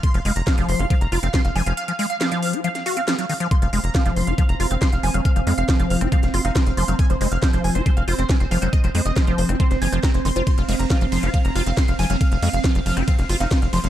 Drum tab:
RD |----------------|----------------|----------------|----------------|
HH |xxoxxxoxxxoxxxox|xxoxxxoxxxoxxxox|xxoxxxoxxxoxxxox|xxoxxxoxxxoxxxox|
SD |----o-------o---|----o----o--o---|----o-------o---|----o----o--o---|
BD |o---o---o---o---|----------------|o---o---o---o---|o---o---o---o---|

RD |----------------|----------------|x-x-x-x-x-x-x-x-|x-x-x-x-x-x-x-x-|
HH |xxoxxxoxxxoxxxox|xxoxxxoxxxoxxxox|xxoxxxoxxxoxxxox|xxoxxxoxxxoxxxox|
SD |----o-------o---|----o----o--o---|----o-------o---|----o----o--o---|
BD |o---o---o---o---|o---o---o---o---|o---o---o---o---|o---o---o---o---|